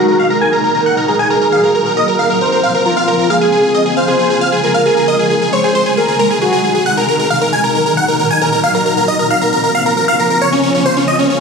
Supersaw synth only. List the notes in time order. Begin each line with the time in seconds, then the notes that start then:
0.08 A#4
0.19 F5
0.30 A#4
0.41 G#5
0.53 A#4
0.64 A#4
0.75 A#4
0.86 F#5
0.97 A#4
1.08 A#4
1.19 G#5
1.30 A#4
1.42 A#4
1.52 F5
1.64 A#4
1.75 A#4
1.86 A#4
1.97 D#5
2.08 A#4
2.19 F5
2.30 A#4
2.41 A#4
2.52 A#4
2.63 F5
2.75 A#4
2.86 A#4
2.97 F5
3.08 A#4
3.19 A#4
3.30 F5
3.41 G#4
3.52 G#4
3.63 G#4
3.74 D#5
3.86 G#4
3.97 F5
4.08 G#4
4.19 G#4
4.30 G#4
4.41 F5
4.52 G#4
4.63 G#4
4.74 F5
4.86 G#4
4.97 G#4
5.08 D#5
5.19 G#4
5.30 G#4
5.41 G#4
5.53 C#5
5.64 G#4
5.75 C5
5.86 G#4
5.97 G#4
6.08 G#4
6.19 A#4
6.30 G#4
6.42 G#4
6.53 G#4
6.64 G#4
6.75 G#4
6.86 F#5
6.97 A#4
7.08 A#4
7.20 A#4
7.30 F5
7.42 A#4
7.53 G#5
7.64 A#4
7.75 A#4
7.86 A#4
7.97 F#5
8.08 A#4
8.20 A#4
8.31 G#5
8.41 A#4
8.53 A#4
8.64 F5
8.75 A#4
8.86 A#4
8.97 A#4
9.08 D#5
9.19 A#4
9.31 F5
9.42 A#4
9.53 A#4
9.64 A#4
9.75 F5
9.86 A#4
9.97 A#4
10.08 F5
10.19 A#4
10.30 A#4
10.42 C#5
10.53 C#4
10.63 C#4
10.75 C#4
10.86 C5
10.97 C#4
11.08 D#5
11.19 C#4
11.30 C#4